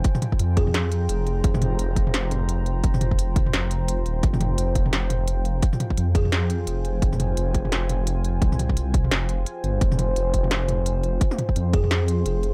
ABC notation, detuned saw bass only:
X:1
M:4/4
L:1/8
Q:"Swing 16ths" 1/4=172
K:Fm
V:1 name="Detuned saw bass" clef=bass
z2 F,,4 F,,,2 | F,,,2 F,,,6 | F,,,4 F,,,3 E,,, | F,,,2 F,,,6 |
z2 F,,4 F,,,2 | F,,,2 F,,,6 | C,,4 F,,,2 z G,,, | F,,,2 F,,,6 |
z2 F,,4 F,,,2 |]